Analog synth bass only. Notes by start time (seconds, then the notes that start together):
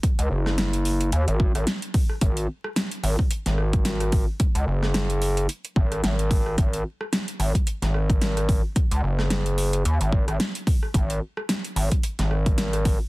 0.19 C#2
0.31 F#1
1.13 D#2
1.28 G#1
1.55 G#1
2.21 G#1
3.03 G#1
3.46 G#1
4.55 C#2
4.67 F#1
5.76 G#1
6.03 G#1
6.58 G#1
7.40 G#1
7.82 G#1
8.91 C#2
9.03 F#1
9.85 D#2
10.01 G#1
10.28 G#1
10.94 G#1
11.76 G#1
12.19 G#1